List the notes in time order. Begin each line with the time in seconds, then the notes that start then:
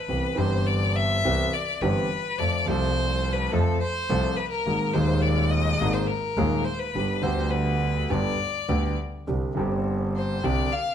Already playing: B4
0.09 C2 C3 E3 B3 C4 G4
0.35 G1 G2 E3 B3 C4 C5
0.39 G4
0.67 D5
0.96 E5
1.25 C2 C3 E3 B3 C4 G4
1.53 D5
1.82 G1 G2 E3 B3 C4 G4 B4
2.39 F2 F3 A3 C4 A4 D5
2.66 C2 C3 F3 A3 C4 C5
2.70 A4
3.33 B4
3.52 F2 F3 A3 C4 A4
3.80 C5
4.10 C2 C3 F3 A3 C4 A4
4.36 B4
4.50 A#4
4.66 G#1 G#2 D#3 G#3 A#3 G#4
4.93 D#1 D#2 D#3 G#3 A#3 C5
4.97 G#4
5.22 D5
5.51 D#5
5.81 G#1 G#2 D#3 G#3 A#3 G#4
5.93 C5
6.07 A#4
6.37 D#1 D#2 D#3 G#3 A#3 G#4
6.64 C5
6.79 B4
6.95 G1 G2 D3 G3 B3 G4
7.22 D2 D3 G3 B3 G4 C5
7.51 B4
8.09 G1 G2 D3 G3 B3 G4 D5
8.68 D2 D3 G3 B3 G4
9.27 C2 C3 D3 G3 C4 G4
9.55 G1 G2 D3 G3 C4
9.59 G4
10.16 C5
10.43 C2 C3 D3 G3 C4 G4 D5
10.72 F5